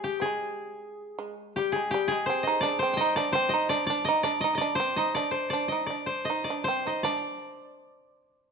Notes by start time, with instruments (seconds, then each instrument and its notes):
Already playing: shamisen G#3, koto C5 D5
0.04 koto G4
0.20 shamisen C4, koto G#4
0.26 shamisen G#3
1.19 shamisen G#3
1.56 shamisen G3, koto G4
1.72 koto G#4
1.76 shamisen G#3
1.91 shamisen G3, koto G4
2.08 koto G#4
2.12 shamisen G#3
2.26 shamisen C4, koto C5
2.43 koto D#5
2.47 shamisen D#4
2.61 shamisen D4, koto D5
2.79 shamisen C4, koto C5
2.93 koto D#5 G5
3.01 shamisen D#4
3.16 shamisen D4, koto D5
3.33 shamisen C4, koto C5
3.49 koto D#5
3.54 shamisen D#4
3.69 shamisen D4, koto D5
3.87 shamisen D4, koto D5
4.05 shamisen D#4, koto D#5
4.23 shamisen D4, koto D5
4.41 shamisen D#4, koto D#5
4.55 koto D5 D#5
4.61 shamisen D4
4.75 koto C5
4.80 shamisen C4
4.96 shamisen D#4, koto D#5
5.15 shamisen D4, koto D5
5.31 koto C5
5.50 shamisen D4, koto D5
5.68 koto D#5
5.72 shamisen D#4
5.86 shamisen D4, koto D5
6.06 koto C5
6.25 koto D#5
6.30 shamisen D#4
6.44 koto D5
6.50 shamisen D4
6.64 koto C5
6.68 shamisen C4
6.87 shamisen D#4, koto D#5
7.03 shamisen D4, koto D5